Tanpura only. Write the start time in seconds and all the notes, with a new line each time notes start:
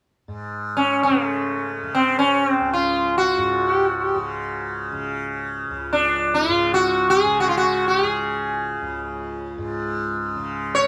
0.28 G#2
1.06 C#3
1.83 C#3
2.61 C#2
3.38 G#2
4.14 C#3
4.92 C#3
5.70 C#2
6.48 G#2
7.25 C#3
8.03 C#3
8.81 C#2
9.58 G#2
10.36 C#3